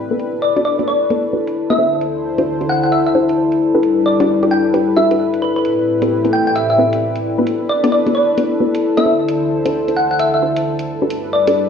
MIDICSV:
0, 0, Header, 1, 6, 480
1, 0, Start_track
1, 0, Tempo, 454545
1, 206, Time_signature, 4, 2, 24, 8
1, 12347, End_track
2, 0, Start_track
2, 0, Title_t, "Synth pluck"
2, 0, Program_c, 0, 84
2, 445, Note_on_c, 0, 74, 84
2, 668, Note_off_c, 0, 74, 0
2, 687, Note_on_c, 0, 74, 86
2, 909, Note_off_c, 0, 74, 0
2, 926, Note_on_c, 0, 74, 85
2, 1145, Note_off_c, 0, 74, 0
2, 1797, Note_on_c, 0, 76, 91
2, 1946, Note_off_c, 0, 76, 0
2, 2845, Note_on_c, 0, 78, 85
2, 2942, Note_off_c, 0, 78, 0
2, 2994, Note_on_c, 0, 78, 73
2, 3052, Note_off_c, 0, 78, 0
2, 3084, Note_on_c, 0, 76, 82
2, 3182, Note_off_c, 0, 76, 0
2, 3237, Note_on_c, 0, 76, 75
2, 3294, Note_off_c, 0, 76, 0
2, 4286, Note_on_c, 0, 74, 84
2, 4508, Note_off_c, 0, 74, 0
2, 4764, Note_on_c, 0, 79, 81
2, 5227, Note_off_c, 0, 79, 0
2, 5244, Note_on_c, 0, 76, 90
2, 5464, Note_off_c, 0, 76, 0
2, 5725, Note_on_c, 0, 71, 81
2, 5822, Note_off_c, 0, 71, 0
2, 5875, Note_on_c, 0, 71, 76
2, 5933, Note_off_c, 0, 71, 0
2, 6684, Note_on_c, 0, 79, 83
2, 6782, Note_off_c, 0, 79, 0
2, 6834, Note_on_c, 0, 79, 69
2, 6893, Note_off_c, 0, 79, 0
2, 6923, Note_on_c, 0, 76, 80
2, 7021, Note_off_c, 0, 76, 0
2, 7075, Note_on_c, 0, 76, 72
2, 7133, Note_off_c, 0, 76, 0
2, 8125, Note_on_c, 0, 74, 91
2, 8348, Note_off_c, 0, 74, 0
2, 8365, Note_on_c, 0, 74, 81
2, 8588, Note_off_c, 0, 74, 0
2, 8605, Note_on_c, 0, 74, 82
2, 8824, Note_off_c, 0, 74, 0
2, 9476, Note_on_c, 0, 76, 89
2, 9626, Note_off_c, 0, 76, 0
2, 10523, Note_on_c, 0, 78, 81
2, 10621, Note_off_c, 0, 78, 0
2, 10676, Note_on_c, 0, 78, 71
2, 10734, Note_off_c, 0, 78, 0
2, 10767, Note_on_c, 0, 76, 82
2, 10863, Note_off_c, 0, 76, 0
2, 10918, Note_on_c, 0, 76, 70
2, 10975, Note_off_c, 0, 76, 0
2, 11965, Note_on_c, 0, 74, 87
2, 12188, Note_off_c, 0, 74, 0
2, 12347, End_track
3, 0, Start_track
3, 0, Title_t, "Ambient pad"
3, 0, Program_c, 1, 92
3, 0, Note_on_c, 1, 64, 85
3, 0, Note_on_c, 1, 69, 75
3, 0, Note_on_c, 1, 74, 79
3, 0, Note_on_c, 1, 79, 71
3, 206, Note_off_c, 1, 79, 0
3, 972, Note_on_c, 1, 81, 76
3, 3804, Note_on_c, 1, 55, 70
3, 5965, Note_off_c, 1, 55, 0
3, 5966, Note_off_c, 1, 81, 0
3, 6423, Note_on_c, 1, 79, 83
3, 7886, Note_off_c, 1, 79, 0
3, 8654, Note_on_c, 1, 81, 75
3, 11487, Note_on_c, 1, 55, 84
3, 12347, Note_off_c, 1, 55, 0
3, 12347, Note_off_c, 1, 64, 0
3, 12347, Note_off_c, 1, 69, 0
3, 12347, Note_off_c, 1, 74, 0
3, 12347, Note_off_c, 1, 81, 0
3, 12347, End_track
4, 0, Start_track
4, 0, Title_t, "Synth stab"
4, 0, Program_c, 2, 62
4, 116, Note_on_c, 2, 59, 77
4, 116, Note_on_c, 2, 62, 68
4, 116, Note_on_c, 2, 66, 69
4, 116, Note_on_c, 2, 69, 67
4, 116, Note_on_c, 2, 71, 84
4, 560, Note_off_c, 2, 59, 0
4, 560, Note_off_c, 2, 66, 0
4, 560, Note_off_c, 2, 69, 0
4, 560, Note_off_c, 2, 71, 0
4, 561, Note_off_c, 2, 62, 0
4, 596, Note_on_c, 2, 59, 98
4, 596, Note_on_c, 2, 62, 91
4, 596, Note_on_c, 2, 66, 91
4, 596, Note_on_c, 2, 69, 90
4, 596, Note_on_c, 2, 74, 104
4, 728, Note_off_c, 2, 59, 0
4, 728, Note_off_c, 2, 62, 0
4, 728, Note_off_c, 2, 66, 0
4, 728, Note_off_c, 2, 69, 0
4, 728, Note_off_c, 2, 74, 0
4, 836, Note_on_c, 2, 59, 81
4, 836, Note_on_c, 2, 62, 69
4, 836, Note_on_c, 2, 66, 74
4, 836, Note_on_c, 2, 69, 70
4, 836, Note_on_c, 2, 74, 89
4, 908, Note_off_c, 2, 59, 0
4, 908, Note_off_c, 2, 62, 0
4, 908, Note_off_c, 2, 66, 0
4, 908, Note_off_c, 2, 69, 0
4, 908, Note_off_c, 2, 74, 0
4, 1165, Note_on_c, 2, 59, 81
4, 1165, Note_on_c, 2, 62, 70
4, 1165, Note_on_c, 2, 66, 74
4, 1165, Note_on_c, 2, 69, 73
4, 1165, Note_on_c, 2, 71, 83
4, 1384, Note_off_c, 2, 59, 0
4, 1384, Note_off_c, 2, 62, 0
4, 1384, Note_off_c, 2, 66, 0
4, 1384, Note_off_c, 2, 69, 0
4, 1384, Note_off_c, 2, 71, 0
4, 1406, Note_on_c, 2, 59, 70
4, 1406, Note_on_c, 2, 62, 63
4, 1406, Note_on_c, 2, 66, 65
4, 1406, Note_on_c, 2, 69, 66
4, 1406, Note_on_c, 2, 71, 82
4, 1582, Note_off_c, 2, 59, 0
4, 1582, Note_off_c, 2, 62, 0
4, 1582, Note_off_c, 2, 66, 0
4, 1582, Note_off_c, 2, 69, 0
4, 1582, Note_off_c, 2, 71, 0
4, 1796, Note_on_c, 2, 62, 74
4, 1796, Note_on_c, 2, 66, 80
4, 1796, Note_on_c, 2, 71, 89
4, 1797, Note_on_c, 2, 59, 84
4, 1797, Note_on_c, 2, 69, 77
4, 1864, Note_off_c, 2, 59, 0
4, 1864, Note_off_c, 2, 62, 0
4, 1864, Note_off_c, 2, 66, 0
4, 1864, Note_off_c, 2, 69, 0
4, 1864, Note_off_c, 2, 71, 0
4, 1885, Note_on_c, 2, 66, 69
4, 1885, Note_on_c, 2, 72, 80
4, 1886, Note_on_c, 2, 62, 77
4, 1886, Note_on_c, 2, 64, 65
4, 1886, Note_on_c, 2, 69, 69
4, 2007, Note_off_c, 2, 62, 0
4, 2007, Note_off_c, 2, 64, 0
4, 2007, Note_off_c, 2, 66, 0
4, 2007, Note_off_c, 2, 69, 0
4, 2007, Note_off_c, 2, 72, 0
4, 2516, Note_on_c, 2, 62, 86
4, 2516, Note_on_c, 2, 64, 77
4, 2516, Note_on_c, 2, 66, 81
4, 2516, Note_on_c, 2, 69, 78
4, 2516, Note_on_c, 2, 72, 97
4, 2588, Note_off_c, 2, 62, 0
4, 2588, Note_off_c, 2, 64, 0
4, 2588, Note_off_c, 2, 66, 0
4, 2588, Note_off_c, 2, 69, 0
4, 2588, Note_off_c, 2, 72, 0
4, 2756, Note_on_c, 2, 62, 70
4, 2756, Note_on_c, 2, 64, 65
4, 2756, Note_on_c, 2, 66, 68
4, 2756, Note_on_c, 2, 69, 65
4, 2756, Note_on_c, 2, 72, 77
4, 3304, Note_off_c, 2, 62, 0
4, 3304, Note_off_c, 2, 64, 0
4, 3304, Note_off_c, 2, 66, 0
4, 3304, Note_off_c, 2, 69, 0
4, 3304, Note_off_c, 2, 72, 0
4, 3325, Note_on_c, 2, 62, 86
4, 3325, Note_on_c, 2, 64, 75
4, 3325, Note_on_c, 2, 66, 79
4, 3325, Note_on_c, 2, 69, 77
4, 3325, Note_on_c, 2, 72, 88
4, 3795, Note_off_c, 2, 62, 0
4, 3795, Note_off_c, 2, 64, 0
4, 3795, Note_off_c, 2, 66, 0
4, 3795, Note_off_c, 2, 69, 0
4, 3795, Note_off_c, 2, 72, 0
4, 3956, Note_on_c, 2, 62, 77
4, 3956, Note_on_c, 2, 66, 72
4, 3956, Note_on_c, 2, 67, 72
4, 3956, Note_on_c, 2, 69, 71
4, 3956, Note_on_c, 2, 71, 87
4, 4400, Note_off_c, 2, 62, 0
4, 4400, Note_off_c, 2, 66, 0
4, 4400, Note_off_c, 2, 67, 0
4, 4400, Note_off_c, 2, 69, 0
4, 4400, Note_off_c, 2, 71, 0
4, 4436, Note_on_c, 2, 62, 98
4, 4436, Note_on_c, 2, 66, 92
4, 4436, Note_on_c, 2, 67, 90
4, 4436, Note_on_c, 2, 69, 90
4, 4436, Note_on_c, 2, 74, 108
4, 4568, Note_off_c, 2, 62, 0
4, 4568, Note_off_c, 2, 66, 0
4, 4568, Note_off_c, 2, 67, 0
4, 4568, Note_off_c, 2, 69, 0
4, 4568, Note_off_c, 2, 74, 0
4, 4675, Note_on_c, 2, 62, 80
4, 4675, Note_on_c, 2, 67, 74
4, 4675, Note_on_c, 2, 69, 75
4, 4676, Note_on_c, 2, 66, 76
4, 4676, Note_on_c, 2, 74, 86
4, 4747, Note_off_c, 2, 62, 0
4, 4747, Note_off_c, 2, 66, 0
4, 4747, Note_off_c, 2, 67, 0
4, 4747, Note_off_c, 2, 69, 0
4, 4747, Note_off_c, 2, 74, 0
4, 5005, Note_on_c, 2, 62, 80
4, 5005, Note_on_c, 2, 66, 73
4, 5005, Note_on_c, 2, 67, 72
4, 5005, Note_on_c, 2, 69, 73
4, 5005, Note_on_c, 2, 71, 83
4, 5224, Note_off_c, 2, 62, 0
4, 5224, Note_off_c, 2, 66, 0
4, 5224, Note_off_c, 2, 67, 0
4, 5224, Note_off_c, 2, 69, 0
4, 5224, Note_off_c, 2, 71, 0
4, 5245, Note_on_c, 2, 62, 82
4, 5245, Note_on_c, 2, 66, 79
4, 5245, Note_on_c, 2, 67, 77
4, 5245, Note_on_c, 2, 69, 78
4, 5245, Note_on_c, 2, 76, 93
4, 5374, Note_off_c, 2, 62, 0
4, 5374, Note_off_c, 2, 66, 0
4, 5374, Note_off_c, 2, 67, 0
4, 5374, Note_off_c, 2, 69, 0
4, 5374, Note_off_c, 2, 76, 0
4, 5395, Note_on_c, 2, 62, 72
4, 5395, Note_on_c, 2, 66, 69
4, 5395, Note_on_c, 2, 67, 66
4, 5395, Note_on_c, 2, 69, 63
4, 5395, Note_on_c, 2, 71, 81
4, 5467, Note_off_c, 2, 62, 0
4, 5467, Note_off_c, 2, 66, 0
4, 5467, Note_off_c, 2, 67, 0
4, 5467, Note_off_c, 2, 69, 0
4, 5467, Note_off_c, 2, 71, 0
4, 6356, Note_on_c, 2, 60, 85
4, 6356, Note_on_c, 2, 64, 79
4, 6356, Note_on_c, 2, 67, 77
4, 6356, Note_on_c, 2, 69, 78
4, 6356, Note_on_c, 2, 71, 96
4, 6428, Note_off_c, 2, 60, 0
4, 6428, Note_off_c, 2, 64, 0
4, 6428, Note_off_c, 2, 67, 0
4, 6428, Note_off_c, 2, 69, 0
4, 6428, Note_off_c, 2, 71, 0
4, 6595, Note_on_c, 2, 67, 65
4, 6595, Note_on_c, 2, 71, 78
4, 6596, Note_on_c, 2, 60, 72
4, 6596, Note_on_c, 2, 64, 67
4, 6596, Note_on_c, 2, 69, 67
4, 7144, Note_off_c, 2, 60, 0
4, 7144, Note_off_c, 2, 64, 0
4, 7144, Note_off_c, 2, 67, 0
4, 7144, Note_off_c, 2, 69, 0
4, 7144, Note_off_c, 2, 71, 0
4, 7165, Note_on_c, 2, 60, 79
4, 7165, Note_on_c, 2, 64, 75
4, 7165, Note_on_c, 2, 67, 79
4, 7165, Note_on_c, 2, 69, 75
4, 7165, Note_on_c, 2, 71, 88
4, 7760, Note_off_c, 2, 60, 0
4, 7760, Note_off_c, 2, 64, 0
4, 7760, Note_off_c, 2, 67, 0
4, 7760, Note_off_c, 2, 69, 0
4, 7760, Note_off_c, 2, 71, 0
4, 7796, Note_on_c, 2, 59, 77
4, 7797, Note_on_c, 2, 62, 71
4, 7797, Note_on_c, 2, 66, 68
4, 7797, Note_on_c, 2, 69, 73
4, 7797, Note_on_c, 2, 71, 86
4, 8241, Note_off_c, 2, 59, 0
4, 8241, Note_off_c, 2, 62, 0
4, 8241, Note_off_c, 2, 66, 0
4, 8241, Note_off_c, 2, 69, 0
4, 8241, Note_off_c, 2, 71, 0
4, 8276, Note_on_c, 2, 59, 98
4, 8276, Note_on_c, 2, 62, 92
4, 8276, Note_on_c, 2, 66, 90
4, 8276, Note_on_c, 2, 69, 91
4, 8276, Note_on_c, 2, 74, 113
4, 8408, Note_off_c, 2, 59, 0
4, 8408, Note_off_c, 2, 62, 0
4, 8408, Note_off_c, 2, 66, 0
4, 8408, Note_off_c, 2, 69, 0
4, 8408, Note_off_c, 2, 74, 0
4, 8516, Note_on_c, 2, 59, 80
4, 8516, Note_on_c, 2, 62, 73
4, 8516, Note_on_c, 2, 66, 72
4, 8516, Note_on_c, 2, 69, 74
4, 8516, Note_on_c, 2, 74, 85
4, 8588, Note_off_c, 2, 59, 0
4, 8588, Note_off_c, 2, 62, 0
4, 8588, Note_off_c, 2, 66, 0
4, 8588, Note_off_c, 2, 69, 0
4, 8588, Note_off_c, 2, 74, 0
4, 8844, Note_on_c, 2, 59, 79
4, 8844, Note_on_c, 2, 66, 72
4, 8845, Note_on_c, 2, 62, 72
4, 8845, Note_on_c, 2, 69, 72
4, 8845, Note_on_c, 2, 71, 92
4, 9064, Note_off_c, 2, 59, 0
4, 9064, Note_off_c, 2, 62, 0
4, 9064, Note_off_c, 2, 66, 0
4, 9064, Note_off_c, 2, 69, 0
4, 9064, Note_off_c, 2, 71, 0
4, 9085, Note_on_c, 2, 59, 74
4, 9085, Note_on_c, 2, 62, 66
4, 9085, Note_on_c, 2, 66, 68
4, 9085, Note_on_c, 2, 69, 67
4, 9085, Note_on_c, 2, 71, 80
4, 9261, Note_off_c, 2, 59, 0
4, 9261, Note_off_c, 2, 62, 0
4, 9261, Note_off_c, 2, 66, 0
4, 9261, Note_off_c, 2, 69, 0
4, 9261, Note_off_c, 2, 71, 0
4, 9476, Note_on_c, 2, 59, 82
4, 9476, Note_on_c, 2, 62, 77
4, 9476, Note_on_c, 2, 66, 76
4, 9476, Note_on_c, 2, 69, 76
4, 9476, Note_on_c, 2, 71, 94
4, 9544, Note_off_c, 2, 59, 0
4, 9544, Note_off_c, 2, 62, 0
4, 9544, Note_off_c, 2, 66, 0
4, 9544, Note_off_c, 2, 69, 0
4, 9544, Note_off_c, 2, 71, 0
4, 9565, Note_on_c, 2, 62, 77
4, 9565, Note_on_c, 2, 64, 68
4, 9565, Note_on_c, 2, 66, 67
4, 9565, Note_on_c, 2, 69, 65
4, 9565, Note_on_c, 2, 72, 82
4, 9686, Note_off_c, 2, 62, 0
4, 9686, Note_off_c, 2, 64, 0
4, 9686, Note_off_c, 2, 66, 0
4, 9686, Note_off_c, 2, 69, 0
4, 9686, Note_off_c, 2, 72, 0
4, 10196, Note_on_c, 2, 62, 84
4, 10196, Note_on_c, 2, 64, 79
4, 10196, Note_on_c, 2, 66, 81
4, 10196, Note_on_c, 2, 69, 80
4, 10196, Note_on_c, 2, 72, 94
4, 10267, Note_off_c, 2, 72, 0
4, 10268, Note_off_c, 2, 62, 0
4, 10268, Note_off_c, 2, 64, 0
4, 10268, Note_off_c, 2, 66, 0
4, 10268, Note_off_c, 2, 69, 0
4, 10436, Note_on_c, 2, 62, 69
4, 10436, Note_on_c, 2, 66, 67
4, 10437, Note_on_c, 2, 64, 69
4, 10437, Note_on_c, 2, 69, 67
4, 10437, Note_on_c, 2, 72, 77
4, 10984, Note_off_c, 2, 62, 0
4, 10984, Note_off_c, 2, 66, 0
4, 10984, Note_off_c, 2, 69, 0
4, 10985, Note_off_c, 2, 64, 0
4, 10985, Note_off_c, 2, 72, 0
4, 11006, Note_on_c, 2, 62, 86
4, 11006, Note_on_c, 2, 64, 77
4, 11006, Note_on_c, 2, 66, 75
4, 11006, Note_on_c, 2, 69, 76
4, 11006, Note_on_c, 2, 72, 90
4, 11475, Note_off_c, 2, 62, 0
4, 11475, Note_off_c, 2, 64, 0
4, 11475, Note_off_c, 2, 66, 0
4, 11475, Note_off_c, 2, 69, 0
4, 11475, Note_off_c, 2, 72, 0
4, 11637, Note_on_c, 2, 62, 80
4, 11637, Note_on_c, 2, 66, 67
4, 11637, Note_on_c, 2, 67, 76
4, 11637, Note_on_c, 2, 69, 71
4, 11637, Note_on_c, 2, 71, 86
4, 12081, Note_off_c, 2, 62, 0
4, 12081, Note_off_c, 2, 66, 0
4, 12081, Note_off_c, 2, 67, 0
4, 12081, Note_off_c, 2, 69, 0
4, 12081, Note_off_c, 2, 71, 0
4, 12116, Note_on_c, 2, 62, 97
4, 12116, Note_on_c, 2, 66, 92
4, 12116, Note_on_c, 2, 69, 92
4, 12116, Note_on_c, 2, 74, 106
4, 12117, Note_on_c, 2, 67, 97
4, 12248, Note_off_c, 2, 62, 0
4, 12248, Note_off_c, 2, 66, 0
4, 12248, Note_off_c, 2, 67, 0
4, 12248, Note_off_c, 2, 69, 0
4, 12248, Note_off_c, 2, 74, 0
4, 12347, End_track
5, 0, Start_track
5, 0, Title_t, "Analog synth pad"
5, 0, Program_c, 3, 89
5, 0, Note_on_c, 3, 45, 81
5, 0, Note_on_c, 3, 60, 70
5, 0, Note_on_c, 3, 64, 72
5, 0, Note_on_c, 3, 67, 72
5, 0, Note_on_c, 3, 71, 85
5, 185, Note_off_c, 3, 45, 0
5, 186, Note_off_c, 3, 60, 0
5, 186, Note_off_c, 3, 64, 0
5, 186, Note_off_c, 3, 67, 0
5, 204, Note_on_c, 3, 69, 68
5, 205, Note_on_c, 3, 62, 75
5, 1849, Note_off_c, 3, 71, 0
5, 1868, Note_off_c, 3, 69, 0
5, 1869, Note_off_c, 3, 62, 0
5, 1885, Note_on_c, 3, 69, 74
5, 1885, Note_on_c, 3, 72, 85
5, 1886, Note_on_c, 3, 50, 81
5, 1886, Note_on_c, 3, 64, 73
5, 3787, Note_off_c, 3, 50, 0
5, 3787, Note_off_c, 3, 64, 0
5, 3787, Note_off_c, 3, 72, 0
5, 3805, Note_on_c, 3, 71, 90
5, 3806, Note_on_c, 3, 55, 81
5, 3806, Note_on_c, 3, 62, 72
5, 5925, Note_off_c, 3, 69, 0
5, 5944, Note_off_c, 3, 55, 0
5, 5944, Note_off_c, 3, 62, 0
5, 5964, Note_on_c, 3, 67, 72
5, 5965, Note_on_c, 3, 45, 80
5, 5965, Note_on_c, 3, 64, 69
5, 5966, Note_on_c, 3, 60, 72
5, 7845, Note_off_c, 3, 71, 0
5, 7866, Note_off_c, 3, 45, 0
5, 7866, Note_off_c, 3, 64, 0
5, 7866, Note_off_c, 3, 67, 0
5, 7867, Note_off_c, 3, 60, 0
5, 7887, Note_on_c, 3, 71, 88
5, 7888, Note_on_c, 3, 62, 78
5, 7888, Note_on_c, 3, 69, 74
5, 9550, Note_off_c, 3, 62, 0
5, 9550, Note_off_c, 3, 71, 0
5, 9565, Note_on_c, 3, 50, 80
5, 9565, Note_on_c, 3, 64, 71
5, 9565, Note_on_c, 3, 72, 90
5, 11466, Note_off_c, 3, 64, 0
5, 11466, Note_off_c, 3, 72, 0
5, 11467, Note_off_c, 3, 50, 0
5, 11486, Note_on_c, 3, 55, 80
5, 11487, Note_on_c, 3, 62, 71
5, 11487, Note_on_c, 3, 71, 93
5, 12347, Note_off_c, 3, 55, 0
5, 12347, Note_off_c, 3, 62, 0
5, 12347, Note_off_c, 3, 69, 0
5, 12347, Note_off_c, 3, 71, 0
5, 12347, End_track
6, 0, Start_track
6, 0, Title_t, "Drums"
6, 206, Note_on_c, 9, 42, 60
6, 311, Note_off_c, 9, 42, 0
6, 597, Note_on_c, 9, 42, 61
6, 702, Note_off_c, 9, 42, 0
6, 836, Note_on_c, 9, 42, 30
6, 942, Note_off_c, 9, 42, 0
6, 1165, Note_on_c, 9, 42, 60
6, 1271, Note_off_c, 9, 42, 0
6, 1557, Note_on_c, 9, 42, 61
6, 1662, Note_off_c, 9, 42, 0
6, 1797, Note_on_c, 9, 42, 46
6, 1902, Note_off_c, 9, 42, 0
6, 2126, Note_on_c, 9, 42, 58
6, 2231, Note_off_c, 9, 42, 0
6, 2517, Note_on_c, 9, 42, 61
6, 2622, Note_off_c, 9, 42, 0
6, 2757, Note_on_c, 9, 42, 30
6, 2862, Note_off_c, 9, 42, 0
6, 3086, Note_on_c, 9, 42, 57
6, 3192, Note_off_c, 9, 42, 0
6, 3477, Note_on_c, 9, 42, 58
6, 3582, Note_off_c, 9, 42, 0
6, 3717, Note_on_c, 9, 42, 46
6, 3823, Note_off_c, 9, 42, 0
6, 4046, Note_on_c, 9, 42, 56
6, 4151, Note_off_c, 9, 42, 0
6, 4437, Note_on_c, 9, 42, 64
6, 4542, Note_off_c, 9, 42, 0
6, 4677, Note_on_c, 9, 42, 31
6, 4782, Note_off_c, 9, 42, 0
6, 5005, Note_on_c, 9, 42, 64
6, 5111, Note_off_c, 9, 42, 0
6, 5397, Note_on_c, 9, 42, 60
6, 5502, Note_off_c, 9, 42, 0
6, 5636, Note_on_c, 9, 42, 48
6, 5742, Note_off_c, 9, 42, 0
6, 5965, Note_on_c, 9, 42, 60
6, 6071, Note_off_c, 9, 42, 0
6, 6356, Note_on_c, 9, 42, 65
6, 6462, Note_off_c, 9, 42, 0
6, 6597, Note_on_c, 9, 42, 33
6, 6702, Note_off_c, 9, 42, 0
6, 6925, Note_on_c, 9, 42, 62
6, 7031, Note_off_c, 9, 42, 0
6, 7316, Note_on_c, 9, 42, 64
6, 7422, Note_off_c, 9, 42, 0
6, 7557, Note_on_c, 9, 42, 52
6, 7662, Note_off_c, 9, 42, 0
6, 7886, Note_on_c, 9, 42, 63
6, 7991, Note_off_c, 9, 42, 0
6, 8277, Note_on_c, 9, 42, 70
6, 8383, Note_off_c, 9, 42, 0
6, 8517, Note_on_c, 9, 42, 33
6, 8623, Note_off_c, 9, 42, 0
6, 8846, Note_on_c, 9, 42, 63
6, 8951, Note_off_c, 9, 42, 0
6, 9237, Note_on_c, 9, 42, 65
6, 9342, Note_off_c, 9, 42, 0
6, 9477, Note_on_c, 9, 42, 52
6, 9582, Note_off_c, 9, 42, 0
6, 9805, Note_on_c, 9, 42, 64
6, 9911, Note_off_c, 9, 42, 0
6, 10197, Note_on_c, 9, 42, 70
6, 10302, Note_off_c, 9, 42, 0
6, 10436, Note_on_c, 9, 42, 35
6, 10542, Note_off_c, 9, 42, 0
6, 10765, Note_on_c, 9, 42, 66
6, 10871, Note_off_c, 9, 42, 0
6, 11157, Note_on_c, 9, 42, 66
6, 11262, Note_off_c, 9, 42, 0
6, 11396, Note_on_c, 9, 42, 55
6, 11502, Note_off_c, 9, 42, 0
6, 11725, Note_on_c, 9, 42, 59
6, 11831, Note_off_c, 9, 42, 0
6, 12117, Note_on_c, 9, 42, 67
6, 12222, Note_off_c, 9, 42, 0
6, 12347, End_track
0, 0, End_of_file